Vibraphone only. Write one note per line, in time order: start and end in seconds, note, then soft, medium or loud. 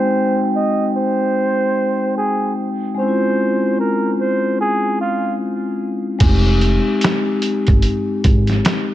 0.00 2.91 G#3 medium
0.00 2.93 C4 medium
0.00 2.94 D#4 medium
0.00 2.98 G5 medium
2.94 6.16 G#3 medium
2.94 6.17 C4 medium
2.99 6.18 C#4 medium
2.99 3.07 E4 medium
3.08 6.23 F4 medium
6.19 8.94 G#3 medium
6.19 8.94 C4 medium
6.24 8.94 D#4 medium
6.24 8.94 G4 medium